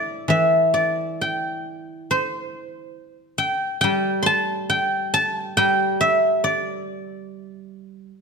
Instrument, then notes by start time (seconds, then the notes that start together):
guzheng
Already playing: E3 D5 E5
0.28 E3 E5
0.74 D5
1.21 G5
2.11 C5
3.38 G5
3.81 G3 G5
4.23 A5 C6
4.70 G5
5.14 A5
5.40 G5
5.57 G3 G5
6.01 E5
6.44 D5